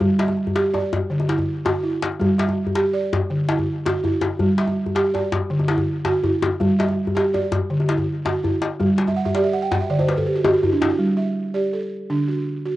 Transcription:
Already playing: balafon E4
0.00 balafon G3, djembe bass
0.19 balafon E5, djembe slap
0.28 djembe slap, djembe tone
0.37 djembe slap
0.47 djembe bass
0.55 balafon G4, djembe slap
0.65 djembe slap
0.73 balafon D5, djembe slap, djembe tone
0.84 djembe slap
0.93 djembe slap, djembe bass
1.10 balafon D3, djembe slap
1.20 djembe slap, djembe tone
1.28 balafon E4, djembe slap
1.38 djembe slap, djembe bass
1.57 djembe slap
1.65 balafon F#4, djembe slap, djembe tone
1.75 djembe slap
1.83 balafon E4, djembe slap
2.02 djembe slap
2.12 djembe slap
2.20 balafon G3, djembe bass
2.38 balafon E5, djembe slap
2.49 djembe tone
2.67 djembe bass
2.75 balafon G4, djembe slap
2.93 balafon D5
3.13 djembe slap, djembe bass
3.30 balafon D3
3.48 balafon E4, djembe slap
3.59 djembe bass
3.86 balafon F#4, djembe slap, djembe tone
4.04 balafon E4, djembe bass
4.21 djembe slap, djembe tone
4.39 balafon G3, djembe bass
4.58 balafon E5, djembe slap
4.67 djembe tone
4.86 djembe bass
4.95 balafon G4, djembe slap
5.14 balafon D5, djembe tone
5.32 djembe slap, djembe bass
5.50 balafon D3
5.59 djembe tone
5.68 balafon E4, djembe slap
5.78 djembe bass
6.05 balafon F#4, djembe slap, djembe tone
6.23 balafon E4, djembe bass
6.42 djembe slap, djembe tone
6.60 balafon G3, djembe bass
6.79 balafon E5, djembe slap
6.88 djembe tone
7.07 djembe bass
7.15 balafon G4, djembe slap
7.34 balafon D5, djembe tone
7.52 djembe slap, djembe bass
7.70 balafon D3
7.80 djembe tone
7.88 balafon E4, djembe slap
7.98 djembe bass
8.25 balafon F#4, djembe slap, djembe tone
8.43 balafon E4, djembe bass
8.62 djembe slap
8.80 balafon G3, djembe bass
8.98 djembe slap
9.07 balafon E5, djembe slap, djembe tone
9.16 balafon F#5
9.25 balafon E5, djembe bass
9.35 balafon G4 D5, djembe slap
9.44 balafon E5
9.53 balafon F#5
9.62 balafon G5
9.71 balafon F#5, djembe slap, djembe bass
9.80 balafon E5, djembe slap
9.90 balafon D3 D5
9.99 balafon C5, djembe tone
10.08 balafon B4, djembe slap
10.17 balafon A4, djembe bass
10.26 balafon G4
10.36 balafon F#4, djembe slap
10.45 balafon F#4 G4, djembe slap, djembe tone
10.54 balafon F#4
10.62 balafon E4, djembe bass
10.72 balafon D4, djembe slap
10.81 balafon E4, djembe slap, djembe tone
10.89 balafon F#4, djembe slap
10.99 balafon G3
11.17 balafon E5
11.54 balafon G4 D5
11.73 balafon A4
12.10 balafon D3 D4
12.28 balafon F#4
12.65 balafon F#4

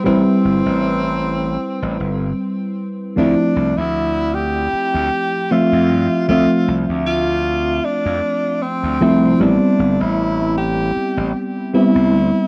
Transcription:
Already playing: fm electric piano G3 C4 E4 B4
0.04 slap bass A1, fm electric piano G3 C4 E4 B4, tenor saxophone C4
0.45 slap bass G1
0.66 slap bass A1
1.83 slap bass A1
2.00 slap bass G1
3.16 slap bass D2, fm electric piano F3 A3 C4 E4, tenor saxophone D4
3.56 slap bass C2
3.77 slap bass D2, tenor saxophone E4
4.34 tenor saxophone G4
4.73 muted slap bass stroke
4.94 slap bass D2
5.51 fm electric piano F3 A3 C4 E5, tenor saxophone F4
5.72 slap bass F2
5.90 slap bass G2
6.28 slap bass D2, fm electric piano F3 A3 C4 E5, tenor saxophone F4
6.68 slap bass C2
6.89 slap bass D2
7.07 tenor saxophone F4
7.85 tenor saxophone D4
8.06 slap bass F2
8.62 tenor saxophone C4
8.83 slap bass D2
9.01 slap bass C2, fm electric piano F3 A3 C4 E4
9.39 slap bass A1, fm electric piano G3 B3 C4 E4, tenor saxophone D4
9.79 slap bass G1
10.00 slap bass A1, tenor saxophone E4
10.57 tenor saxophone G4
10.96 muted slap bass stroke
11.17 slap bass A1
11.73 fm electric piano G3 B3 C4 E4, tenor saxophone E4
11.95 slap bass C2
12.13 slap bass D2

